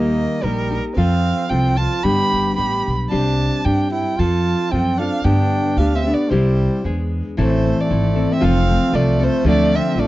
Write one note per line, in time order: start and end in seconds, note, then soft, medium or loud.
0.00 0.25 D#2 medium
0.00 0.44 D#3 medium
0.00 0.43 G3 medium
0.00 0.43 A#3 medium
0.00 0.44 D#4 medium
0.00 0.44 G4 medium
0.00 0.45 D#5 medium
0.41 0.78 A#1 medium
0.41 0.83 G3 medium
0.41 0.72 G3 soft
0.41 0.70 A#3 soft
0.41 0.70 D#4 soft
0.41 0.84 A#4 medium
0.46 0.69 G4 soft
0.70 0.96 A#3 soft
0.70 0.97 D#4 soft
0.70 0.96 G4 soft
0.95 1.32 F2 medium
0.95 1.49 F3 medium
0.95 1.49 C4 medium
0.95 1.49 F4 medium
0.95 1.50 A4 medium
0.95 1.51 F5 medium
1.49 1.85 C2 medium
1.49 2.04 F3 medium
1.49 1.79 C4 medium
1.49 2.04 C4 soft
1.49 2.04 F4 soft
1.49 2.05 A4 soft
1.49 1.78 G5 medium
1.77 2.06 F4 medium
1.77 2.05 A5 medium
2.03 2.22 G2 medium
2.03 2.58 G2 medium
2.03 2.58 D3 medium
2.03 2.55 G3 medium
2.03 2.56 B3 medium
2.03 2.56 D4 medium
2.03 2.54 G4 medium
2.03 2.57 G4 medium
2.03 2.55 B5 loud
2.33 2.56 G1 medium
2.55 2.84 A1 medium
2.55 3.10 G3 soft
2.55 3.11 B3 soft
2.55 3.10 D4 soft
2.55 2.95 G4 medium
2.55 3.11 G4 soft
2.55 2.95 B5 medium
2.87 3.10 B1 medium
3.09 3.66 C3 medium
3.09 3.63 G3 soft
3.09 3.65 C4 medium
3.09 3.64 D4 medium
3.09 3.65 D4 medium
3.09 3.65 G4 medium
3.09 3.66 A5 medium
3.13 3.48 C2 medium
3.64 4.01 G2 medium
3.64 4.18 G3 soft
3.64 4.18 C4 soft
3.64 3.90 D4 medium
3.64 4.19 D4 soft
3.64 4.19 G4 soft
3.64 3.92 G5 medium
3.91 4.18 E4 medium
3.91 4.20 G5 medium
4.17 4.54 F2 medium
4.17 4.72 F3 medium
4.17 4.72 C4 medium
4.17 4.73 F4 medium
4.17 4.73 A4 medium
4.17 4.73 A5 medium
4.71 5.07 F#2 medium
4.71 5.01 F3 soft
4.71 4.99 C4 medium
4.71 5.01 C4 soft
4.71 4.99 F4 soft
4.71 4.98 A4 soft
4.71 5.00 G5 medium
4.98 5.23 D4 medium
4.98 5.24 F4 soft
4.98 5.25 A4 soft
4.98 5.26 F5 medium
5.02 5.24 C4 soft
5.23 5.78 G2 medium
5.23 5.59 G2 medium
5.23 5.78 D3 medium
5.23 5.76 A3 medium
5.23 5.77 B3 medium
5.23 5.77 D4 medium
5.23 5.78 G4 medium
5.23 5.79 G5 medium
5.77 6.12 D2 medium
5.77 6.06 A3 soft
5.77 6.06 B3 medium
5.77 5.96 D4 medium
5.77 6.05 D4 soft
5.77 6.04 G4 medium
5.77 5.97 F5 medium
5.95 6.13 C4 medium
5.95 6.15 E5 medium
6.05 6.31 A3 soft
6.05 6.31 B3 soft
6.05 6.31 D4 soft
6.05 6.30 G4 soft
6.12 6.31 B3 medium
6.12 6.32 D5 medium
6.30 6.66 C2 medium
6.30 6.85 C3 medium
6.30 6.85 G3 medium
6.30 6.83 G3 medium
6.30 6.85 C4 medium
6.30 6.85 E4 medium
6.30 6.85 G4 medium
6.30 6.85 C5 medium
6.84 7.20 E2 medium
6.84 7.37 G#3 soft
6.84 7.38 B3 soft
6.84 7.38 D4 soft
6.84 7.38 G#4 soft
7.37 7.72 A1 medium
7.37 7.90 A2 medium
7.37 7.90 E3 medium
7.37 8.48 E3 medium
7.37 7.89 A3 medium
7.37 7.81 A3 medium
7.37 7.89 C4 medium
7.37 7.90 E4 medium
7.37 7.91 A4 medium
7.37 7.82 C5 medium
7.66 8.69 A3 medium
7.80 8.34 A3 medium
7.80 8.34 D5 medium
7.90 8.24 G#1 medium
7.90 8.16 A3 medium
7.90 8.15 C4 soft
7.90 8.94 C4 medium
7.90 8.15 E4 soft
7.90 8.14 A4 medium
8.15 8.40 A3 soft
8.15 8.40 C4 soft
8.15 8.41 E4 soft
8.15 8.48 E4 medium
8.15 8.40 A4 soft
8.32 8.46 C4 medium
8.32 8.45 E5 medium
8.40 8.76 F1 medium
8.40 8.90 F3 medium
8.40 9.44 F3 medium
8.40 8.91 C4 medium
8.40 8.92 F4 medium
8.40 8.92 A4 medium
8.40 8.97 F5 medium
8.46 8.97 C4 medium
8.69 9.72 A3 medium
8.92 9.27 C2 medium
8.92 9.20 F3 medium
8.92 9.23 A3 medium
8.92 9.20 C4 medium
8.92 10.07 C4 medium
8.92 9.19 F4 medium
8.92 9.18 A4 medium
8.92 9.25 D5 medium
9.20 9.46 A3 medium
9.20 9.45 C4 soft
9.20 9.45 F4 soft
9.20 10.07 F4 medium
9.20 9.45 A4 soft
9.20 9.46 C5 medium
9.44 9.78 D2 loud
9.44 9.97 D3 medium
9.44 10.07 F3 medium
9.44 9.94 F3 medium
9.44 9.77 A3 medium
9.44 9.95 D4 medium
9.44 9.96 F4 medium
9.44 9.96 A4 medium
9.49 9.77 D5 medium
9.72 10.07 A3 medium
9.72 10.01 C4 medium
9.72 10.01 E5 medium
9.95 10.07 A1 medium
9.95 10.07 F3 soft
9.95 10.07 D4 soft
9.95 10.07 D4 medium
9.95 10.07 F4 medium
9.95 10.07 A4 medium
9.95 10.07 D5 medium
10.00 10.07 A3 medium